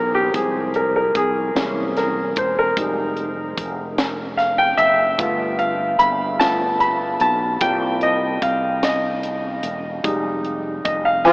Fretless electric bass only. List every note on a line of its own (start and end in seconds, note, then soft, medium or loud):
0.00 0.31 B1 medium
0.34 1.11 C2 medium
1.15 1.52 C2 medium
1.55 2.32 C2 medium
2.37 2.74 E1 medium
2.77 3.54 F1 medium
3.58 4.75 F1 medium
4.78 5.16 F#1 medium
5.19 5.96 G1 medium
6.00 7.17 G1 medium
7.20 7.58 B1 loud
7.61 8.38 C2 medium
8.42 9.60 C2 medium
9.63 10.01 E1 medium
10.04 10.81 F1 medium
10.85 11.33 F1 medium